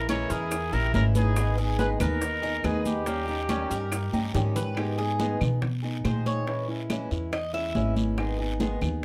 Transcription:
Already playing: A#1
0.09 E3 G#3 C#4 E4 A#4 C#5, high bongo, high conga, short guiro, claves, maracas
0.30 E2 G#3 C#4 E4 G#4 A#4, high bongo, high conga, short guiro, maracas
0.51 muted steel-string acoustic guitar stroke, high bongo, high conga, long guiro, claves, maracas
0.72 A#1 G#3 C#4 E4 G4 A#4, high bongo, high conga, maracas
0.94 G#1 E3 G#3 C#4 E4 A#4, high bongo, low bongo, high conga, short guiro, maracas
1.15 D#4 G#4 B4, high bongo, high conga, short guiro, maracas
1.36 D#3 G#3 B3 D#4 G#4, high bongo, high conga, long guiro, claves, maracas
1.58 B3 D#4 G#4, high conga, maracas
1.79 D#3 G#3 B3 D#4 G#4 B4, high bongo, high conga, short guiro, maracas
2.00 D#2 B3 D#4 G#4 A#4, high bongo, high conga, low conga, short guiro, claves, maracas
2.21 muted steel-string acoustic guitar stroke, high bongo, high conga, long guiro, maracas
2.42 B3 D#4 G#4, high bongo, high conga, maracas
2.64 D#2 D#3 G#3 B3 D#4 G#4 B4, high bongo, low bongo, high conga, short guiro, claves, maracas
2.85 D#4 G4, high bongo, high conga, short guiro, maracas
3.06 D#3 G3 A#3 C#4 G4, high bongo, high conga, long guiro, maracas
3.27 G3 C#4 G4, high conga, maracas
3.48 D#3 G3 C#4 G4, high bongo, high conga, short guiro, claves, maracas
3.70 G2 G3 C#4 G4 A#4, high bongo, high conga, short guiro, maracas
3.91 muted steel-string acoustic guitar stroke, high bongo, high conga, long guiro, claves, maracas
4.12 G2 G3 C#4 D#4 G4, high bongo, high conga, maracas
4.33 G#2 D#3 G3 C#4 G4, high bongo, low bongo, low conga, short guiro, maracas
4.56 B4, high bongo, low conga, short guiro, maracas
4.76 D#3 G#3 B3 D#4 G4 G#4, high bongo, high conga, long guiro, claves
4.97 B3 D#4 G#4, high conga
5.19 D#3 G#3 B3 D#4 G#4, high bongo, high conga, short guiro
5.40 B2 B3 D#4 G#4, high bongo, high conga, low conga, short guiro, claves
5.61 muted steel-string acoustic guitar stroke, high bongo, high conga, low conga, long guiro
5.82 B3 D#4 G#4, high bongo, high conga
6.04 A#2 D#3 G#3 D#4 G#4 C5, high bongo, low bongo, high conga, short guiro, claves
6.26 C#5, high bongo, high conga, short guiro
6.46 E3 G#3 C#4 E4, high bongo, high conga, long guiro
6.68 G#3 C#4 E4, high conga
6.90 E3 G#3 C#4 E4, high bongo, high conga, short guiro, claves
7.11 E2 G#3 C#4 E4, high bongo, high conga, short guiro
7.32 D#5, muted steel-string acoustic guitar stroke, high bongo, high conga, long guiro, claves
7.53 G#3 C#4 E4 E5, high bongo, high conga
7.74 G#1 E3 G#3 C#4 E4, high bongo, low bongo, high conga, short guiro
7.96 high bongo, high conga, short guiro
8.17 D#3 G#3 B3 D#4 G#4, high bongo, high conga, long guiro, claves
8.39 B3 D#4 G#4, high conga
8.60 D#3 G#3 B3 D#4 G#4, high bongo, high conga, short guiro
8.81 D#2 B3 D#4 G#4, high bongo, high conga, low conga, short guiro, claves

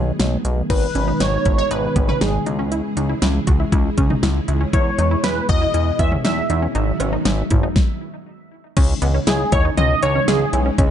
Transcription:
Already playing: B1 D#3 F#3 A3 B3 G#4
0.20 B1, snare, closed hi-hat
0.45 B1, closed hi-hat
0.70 G#1 B2 D#3 G#3 D#4 G#4 B4, kick, closed hi-hat, crash
0.95 G#1 C#4, closed hi-hat
1.08 D#4
1.20 G#1 D#4 C#5, snare, closed hi-hat
1.45 G#1 E4, kick, closed hi-hat
1.58 D#4 C#5
1.71 G#1 D#4 B4, closed hi-hat
1.96 G#1 B3, kick, closed hi-hat
2.08 C#4 B4, mid tom
2.21 G#1 D#4 G#4, snare, closed hi-hat
2.46 C#2 C#3 E3 D#4 E4, closed hi-hat
2.59 C#4
2.72 E4, closed hi-hat
2.97 C#2 D#4, closed hi-hat
3.09 E4
3.22 C#2 E4, snare, closed hi-hat
3.47 C#2 F#4, kick, closed hi-hat
3.60 E4
3.72 C#2 E4, kick, closed hi-hat
3.98 C#2 C#4, kick, closed hi-hat
4.10 D#4, mid tom
4.23 C#2 E4, snare, closed hi-hat
4.48 C#2 E4, closed hi-hat
4.61 C#4
4.73 E2 B2 E3 E4 C#5, kick, closed hi-hat
4.99 E2 D#4, closed hi-hat
5.11 E4
5.24 E2 E4 B4, snare, closed hi-hat
5.49 E2 F#4 D#5, kick, closed hi-hat
5.62 E4
5.74 E2 E4, closed hi-hat
5.99 E2 B3 E5, kick, closed hi-hat
6.12 C#4, mid tom
6.25 E2 D#4 E5, snare, closed hi-hat
6.50 E2 D#4, closed hi-hat
6.62 C#4
6.75 G#1 D#3 F#3 G#3 B3 D#4 F#4, closed hi-hat
7.00 G#1 C#4, closed hi-hat, cowbell
7.13 D#4
7.25 G#1 D#4, snare, closed hi-hat
7.50 G#1 E4, kick, closed hi-hat, mid tom
7.63 D#4
7.76 kick, snare
8.77 C#2 C#3 E3 G#3 C#4 D#4 E4, kick, closed hi-hat, crash
9.02 C#2 B3, closed hi-hat
9.14 C#4
9.27 C#2 E4 G#4, snare, closed hi-hat
9.52 D#2 E4 C#5, kick, closed hi-hat
9.65 D#4
9.77 C#2 C#4 D#5, closed hi-hat, mid tom
10.03 C#2 D#4 C#5, closed hi-hat
10.15 C#4
10.28 C#2 C#4 G#4, snare, closed hi-hat
10.53 B1 E4, closed hi-hat
10.66 C#4
10.78 C#2 C#4, kick, closed hi-hat

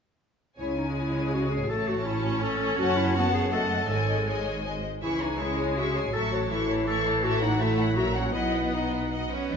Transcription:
0.59 C#2 C#3 G#3 E4 C#5 G#5
0.78 D#4
0.96 E4
1.33 F#4
1.51 G#4
1.69 A1 A2 A3 A4 A5
1.88 F#4
2.06 C#4 E4
2.43 A4
2.78 F#1 F#2 F#4 C#5 F#5 A5
2.97 E4
3.15 B3 F#4 C#5 F#5 A5
3.34 G#4
3.51 A3 A4 D#5 F#5 A5
3.89 G#1 G#2 G#3 A4 C#5 D#5 G#5
4.27 G#4 C#5 D#5 G#5
4.65 C5 D#5 G#5
5.02 C#2 C#3 E3 E4 G#4 E5 C#6
5.21 D#4 C#5 G#5
5.39 G#3 E4 G#4 E5 C#6
5.58 C#5 G#5
5.76 F#4 G#4 E5 C#6
5.95 G#4 C#5 G#5
6.13 A1 A2 F#3 A4 E5 C#6
6.32 F#4 C#5 A5
6.50 E3 E4 A4 E5 C#6
6.69 C#5 A5
6.88 A4 E5 C#6
7.06 C#5 A5
7.23 F#4 A4 E5 A5
7.42 D#4 C#5 F#5
7.59 A3 E4 A4 E5 A5
7.78 E4 C#5 F#5
7.96 A#1 A#2 F#3 F#4 A#4 E5 A#5
8.15 C#4 C#5 F#5
8.34 B1 B2 B3 E4 D#5 F#5
8.53 B4 D#5 F#5
8.73 D#4 D#5 F#5
8.92 B4 D#5 F#5
9.12 D#5 F#5
9.31 C#4 B4 D#5 F#5
9.50 E2 B3

